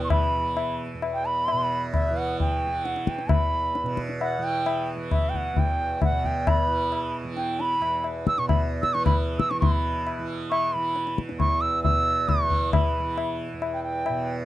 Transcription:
Already playing: tanpura E2 B2 E3
0.04 bansuri C#6
0.09 bansuri B5, tabla na, tabla ge
0.37 tanpura E3
0.57 tabla na
0.94 tanpura E2
1.02 tabla na
1.14 bansuri G5
1.26 bansuri B5
1.48 tabla na
1.52 tanpura B2
1.94 bansuri E5, tabla na, tabla ge
2.11 tanpura E3
2.17 bansuri F#5
2.40 bansuri G5, tabla tin, tabla ge
2.67 tanpura E3
2.85 bansuri F#5, tabla te
2.96 tabla te
3.07 bansuri G5, tabla ke
3.19 tabla te
3.26 tanpura E2, tabla na, tabla ge
3.31 bansuri B5
3.75 tabla te
3.83 tanpura B2, tabla te
3.97 tabla ke
4.09 tabla te
4.21 bansuri F#5, tabla na
4.38 tanpura E3
4.44 bansuri G5
4.66 tabla na
4.96 tanpura E3
5.11 bansuri E5, tabla na, tabla ge
5.29 bansuri G5
5.34 bansuri F#5, tabla ge
5.53 tanpura E2, tabla tin, tabla ge
5.59 bansuri G5
6.02 bansuri F#5, tabla na, tabla ge
6.10 tanpura B2
6.24 bansuri G5, tabla ge
6.47 bansuri B5, tabla na, tabla ge
6.67 tanpura E3
6.92 tabla na
7.24 tanpura E3
7.37 bansuri G5, tabla te
7.60 bansuri B5, tabla te
7.81 tanpura E2, tabla na
8.04 tabla na
8.27 bansuri E6, tabla ke
8.38 tanpura B2, bansuri C#6, tabla te
8.48 bansuri B5, tabla na, tabla ge
8.82 bansuri E6, tabla ke
8.93 tanpura E3, bansuri C#6, tabla te
9.06 bansuri B5, tabla na, tabla ge
9.39 bansuri E6, tabla ke
9.50 tanpura E3, bansuri C#6, tabla te
9.60 tanpura B2, bansuri B5, tabla na, tabla ge
10.07 tabla na
10.19 tanpura E3
10.51 bansuri C#6, tabla na
10.73 tanpura E3, bansuri B5
10.96 tabla te
11.07 tabla te
11.18 tabla ke
11.29 tanpura E2, tabla te
11.39 bansuri C#6, tabla na, tabla ge
11.61 bansuri E6
11.83 tanpura B2, bansuri E6, tabla tin, tabla ge
12.29 bansuri C#6, tabla na, tabla ge
12.42 tanpura E3
12.51 tabla ge
12.73 bansuri B5, tabla na, tabla ge
12.99 tanpura E3
13.18 tabla na
13.53 tanpura E2
13.62 tabla na
13.74 bansuri G5
13.84 bansuri G5
14.06 tanpura B2, tabla na

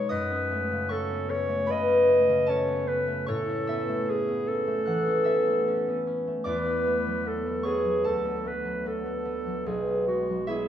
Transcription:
Already playing: harp B2 F#3 G#3 D#4 F#4 A4 B4 C#5 A5 B5 C#6
0.09 harp F#2 D#5 D#6, clarinet B4
0.31 harp C#4
0.51 harp A3
0.72 harp C#3
0.89 harp C#4 C#5 C#6, clarinet A4
1.11 harp B3
1.29 harp C#4, clarinet C#5
1.49 harp A3
1.67 harp C#3 B4 B5
1.71 clarinet D#5
1.88 harp C#4
2.08 harp A3
2.29 harp C#3
2.46 harp C#4 A4 A5, clarinet C#5
2.68 harp B3
2.87 harp C#4, clarinet B4
3.08 harp A3
3.26 harp A2 C#5 C#6, clarinet A4
3.49 harp C#4
3.67 harp B3 E5 E6
3.89 harp A3
4.09 harp C#4, clarinet G#4
4.29 harp B3
4.48 harp C#4, clarinet A4
4.67 harp A3
4.86 harp E3 F#5 F#6
5.07 harp C#4
5.24 harp B3 E5 E6
5.47 harp A3
5.68 harp C#4
5.88 harp B3
6.07 harp C#4
6.27 harp A3
6.44 harp E2 D5 D6, clarinet B4
6.66 harp B3
6.87 harp A3
7.07 harp F#3
7.25 harp B3, clarinet A4
7.46 harp A3
7.63 harp B3 C#5 C#6, clarinet G#4
7.85 harp F#3
8.04 harp D2 A4 A5, clarinet A4
8.25 harp B3
8.45 harp A3, clarinet B4
8.65 harp F#3
8.86 harp B3, clarinet A4
9.06 harp A3
9.25 harp B3
9.46 harp F#3
9.66 harp B1, clarinet G#4
9.88 harp B3
10.07 harp G#3, clarinet F#4
10.29 harp F#3
10.47 harp B3 E4 E5, clarinet G#4

